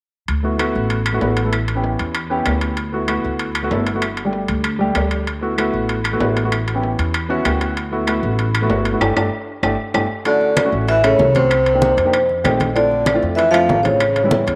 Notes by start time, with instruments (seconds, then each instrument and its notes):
0.28 upright bass D2, high timbale
0.43 grand piano A3 B3 E4 F#4
0.58 grand piano A3 B3 E4 F#4, high timbale, low timbale, claves
0.75 upright bass A1
0.90 high timbale
1.06 high timbale, claves
1.13 grand piano A3 B3 E4 F#4
1.21 upright bass A1, grand piano A3 B3 E4 F#4, low timbale
1.37 high timbale
1.44 grand piano A3 B3 E4 A4
1.53 high timbale, claves
1.68 high timbale
1.75 grand piano B3 C#4 E4 G4
1.84 low timbale
1.99 upright bass E2, high timbale
2.15 high timbale, claves
2.30 grand piano B3 C#4 E4 G4
2.46 upright bass D2, high timbale, low timbale, claves
2.61 high timbale
2.77 high timbale
2.92 grand piano A3 B3 E4 F#4
3.08 grand piano A3 B3 E4 F#4, high timbale, low timbale, claves
3.24 upright bass D2
3.39 high timbale
3.55 high timbale, claves
3.62 grand piano A3 B3 E4 F#4
3.71 upright bass G1, grand piano A3 B3 E4 A4, low timbale
3.87 high timbale
3.94 grand piano A3 B3 E4 F#4
4.02 high timbale, claves
4.17 high timbale
4.25 grand piano G3 A3 D4 G4
4.33 low timbale
4.48 upright bass D2, high timbale
4.64 high timbale, claves
4.79 grand piano G3 A3 D4 G4
4.95 upright bass D2, high timbale, low timbale, claves
5.11 high timbale
5.27 high timbale
5.41 grand piano A3 B3 E4 F#4
5.58 grand piano A3 B3 E4 F#4, high timbale, low timbale, claves
5.74 upright bass A1
5.89 high timbale
6.04 high timbale, claves
6.12 grand piano A3 B3 E4 F#4
6.20 upright bass A1, grand piano A3 B3 E4 F#4, low timbale
6.37 high timbale
6.43 grand piano A3 B3 E4 F#4
6.52 high timbale, claves
6.68 high timbale
6.74 grand piano B3 C#4 E4 G4
6.83 low timbale
6.99 upright bass E2, high timbale
7.14 high timbale, claves
7.29 grand piano B3 C#4 E4 F#4 E5
7.45 upright bass D2, grand piano G5, high timbale, low timbale, claves
7.60 grand piano F#5, high timbale
7.77 high timbale
7.91 grand piano A3 B3 E4 F#4
8.07 grand piano A3 B3 E4 F#4, high timbale, low timbale, claves
8.23 upright bass A1
8.39 high timbale
8.54 high timbale, claves
8.61 grand piano A3 B3 E4 F#4
8.69 upright bass G1, grand piano A3 B3 E4 F#4, low timbale
8.85 high timbale
8.92 grand piano A3 B3 E4 F#4
9.00 upright bass G1, grand piano A3 D4 G4, high timbale, claves
9.16 upright bass G1, grand piano A3 D4 G4, high timbale, claves
9.63 upright bass G1, grand piano A3 D4 G4, high timbale, claves
9.94 upright bass G1, grand piano A3 D4 G4, high timbale, claves
10.25 baritone saxophone D3, grand piano A3 C#4 E4 F#4, vibraphone D5, high conga, high timbale
10.41 high conga
10.57 high conga, high timbale, low timbale, claves
10.64 grand piano A3 C#4 E4 F#4
10.72 upright bass A1, high conga
10.88 baritone saxophone E3, vibraphone E5, high conga, high timbale
11.03 baritone saxophone C#3, grand piano A3 C#4 E4 A4, vibraphone C#5, high conga, high timbale, claves
11.19 upright bass C2, high conga, low timbale
11.34 baritone saxophone C3, grand piano A3 C#4 E4 F#4, vibraphone C5, high conga, high timbale
11.51 high timbale, claves
11.66 high conga, high timbale
11.74 grand piano A#3 D4 D#4 G4
11.82 high conga, low timbale
11.97 upright bass F2, high conga, high timbale
12.05 grand piano A#3 D4 D#4 G4
12.13 high conga, high timbale, claves
12.29 high conga
12.44 upright bass A#1, grand piano A3 C4 D#4 G4, high conga, high timbale, low timbale, claves
12.60 high conga, high timbale
12.75 baritone saxophone D3, grand piano A3 C4 D4 F4, vibraphone D5, high conga, high timbale
12.92 high conga
13.06 high conga, high timbale, low timbale, claves
13.14 grand piano A3 C4 D4 F4
13.22 upright bass F2, high conga
13.35 baritone saxophone E3, vibraphone E5, high conga, high timbale
13.51 baritone saxophone F3, grand piano A3 C4 D4 F4, vibraphone F5, high conga, high timbale, claves
13.69 upright bass A1, high conga, low timbale
13.83 baritone saxophone C#3, grand piano A3 C4 D4 F4, vibraphone C#5, high conga, high timbale
14.00 high conga, high timbale, claves
14.16 high conga, high timbale
14.23 grand piano G3 B3 C#4 E4
14.31 high conga, low timbale
14.47 upright bass E2, high conga, high timbale